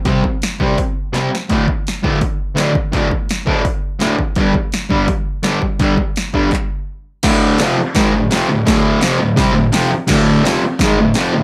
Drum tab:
CC |--------|--------|--------|--------|
HH |o-o-o-o-|o-o-o-o-|o-o-o-o-|o-o-o-o-|
CP |--------|--------|--------|--------|
SD |--o---oo|--o---o-|--o---o-|--o---o-|
BD |oo-oo---|oo-oo--o|oo-oo--o|oo-oo--o|

CC |--------|x-------|--------|x-------|
HH |o-o-----|o-o-o-o-|o-o-o-o-|--o-o-o-|
CP |----x---|--------|--------|--------|
SD |--o-----|o-o-o-o-|o-o-o-o-|o-o-o-o-|
BD |oo-oo---|o---o---|o---o---|o---o---|